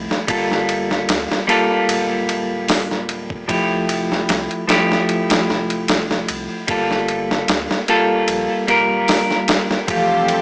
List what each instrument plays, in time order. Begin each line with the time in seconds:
Already playing: clean electric guitar F3 A3 E4 G4
0.11 snare
0.27 sub bass G1, clean electric guitar G3 A#3 F4 A4, kick, ride
0.51 snare
0.69 ride
0.91 snare
1.09 sub bass D2, snare, ride
1.32 snare
1.47 clean electric guitar G3 A#3 F4 A4, ride
1.89 sub bass D1, ride
2.29 ride
2.68 snare, open hi-hat
2.91 snare
3.09 ride
3.30 kick
3.48 sub bass F1, clean electric guitar F3 A3 E4 G4, kick, ride
3.89 ride
4.12 snare
4.29 sub bass C2, snare, ride
4.51 ride
4.67 clean electric guitar F3 A3 E4 G4, snare, ride
4.92 snare
5.09 ride
5.30 snare, ride
5.50 sub bass F1, snare
5.70 ride
5.88 snare, ride
6.11 snare
6.28 sub bass C2, ride
6.68 sub bass G1, clean electric guitar G3 A#3 F4 A4, kick, ride
6.91 snare
7.08 ride
7.31 snare
7.48 sub bass D2, snare, ride
7.71 snare
7.88 clean electric guitar G3 A#3 F4 A4, ride
8.28 sub bass A#1, ride
8.67 sub bass F1, clean electric guitar G3 A#3 F4 A#4, ride
8.90 sub bass D1
9.08 snare, open hi-hat
9.31 snare
9.48 snare, ride
9.71 snare
9.87 sub bass F1, clean electric guitar E3 F3 A3 G4, string section G3 C4 G4 A4, flute F5, kick, ride
10.28 ride